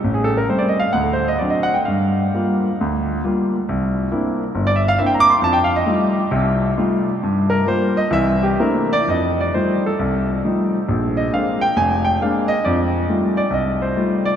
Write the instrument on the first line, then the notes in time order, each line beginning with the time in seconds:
grand piano
0.04 A1
0.14 G#4
0.24 A4
0.37 A#4
0.48 G3 A3 C4 C5
0.59 D5
0.69 D#5
0.80 F5
0.93 D2 F#5
1.04 A4
1.13 C5
1.28 D#5
1.38 F#3 C4 D4 D5
1.50 D#5
1.63 F#5
1.74 G5
1.85 G2 F5
2.34 G3 A#3 F4
2.81 D2
3.24 G3 A#3 F4
3.69 C2
4.11 A#3 C4 D4 E4
4.55 G1
4.67 D5
4.76 E5
4.88 F5
4.98 A#3 C4 D4 E4 E5
5.06 G5
5.14 A#5
5.20 D6
5.30 C6
5.42 F2 A5
5.53 G5
5.64 F5
5.76 D#5
5.86 G3 A3 D#4 F4
6.31 C2 C3
6.77 G3 A3 D#4 F4
7.23 G2
7.50 A#4
7.66 G3 A#3 F4 C5
7.97 D#5
8.11 C2 E3 E5
8.43 G4
8.59 A3 A#3 C4 D4 E4 A#4
8.93 D5
9.08 F2 D#5
9.41 D5
9.54 F3 G3 A3 D#4 C5
9.86 A4
9.99 C2
10.44 F3 G3 A3 D#4
10.89 A#1
11.17 D#5
11.32 G#3 A#3 C4 D4 F5
11.61 G5
11.76 F1 G#5
12.05 G5
12.21 G#3 A#3 C4 D4 F5
12.48 D#5
12.65 F2 D5
13.09 G3 A3 D#4 F4
13.37 D5
13.50 C2 D#5
13.82 C5
13.96 G3 A3 D#4 F4
14.25 D5